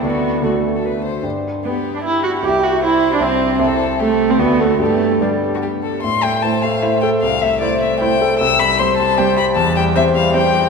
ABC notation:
X:1
M:3/4
L:1/16
Q:1/4=152
K:G
V:1 name="Violin"
F4 F3 A B2 c2 | z4 G4 G4 | E4 c8 | A4 G4 F4 |
G4 D3 F G2 A2 | [K:Am] c'2 g2 a2 f2 e2 g2 | f2 e2 d2 e2 g4 | e'2 b2 c'2 a2 g2 b2 |
a2 g2 e2 f2 g4 |]
V:2 name="Grand piano"
[D,,A,Fd]4 [D,,A,Fd]8 | [G,,G,Gd]12 | [C,,G,Ge]8 [C,,G,Ge]4 | [C,,CEe]8 [D,,A,Fd]4 |
[G,,B,Gd]4 [G,,B,Gd]8 | [K:Am] A,,2 A,2 c2 A,2 c2 A2 | C,,2 A,2 c2 A,2 c2 A2 | C,,2 G,2 c2 G,2 c2 G2 |
E,,2 G,2 c2 G,2 c2 G2 |]
V:3 name="Viola"
B,4 A,4 z4 | z4 B,3 D E2 F2 | G2 F2 E3 D C4 | z4 A,3 C B,2 A,2 |
A,4 G,4 z4 | [K:Am] z4 E4 E4 | z4 E4 E4 | z4 C4 C4 |
z4 C4 C4 |]
V:4 name="Cello"
B,4 A,4 z4 | z4 B,3 D E2 F2 | G2 F2 E3 D C4 | z4 A,3 C B,2 A,2 |
A,4 G,4 z4 | [K:Am] z4 A,4 A,4 | z4 A,4 A,4 | z4 G,4 G,4 |
z4 G,4 G,4 |]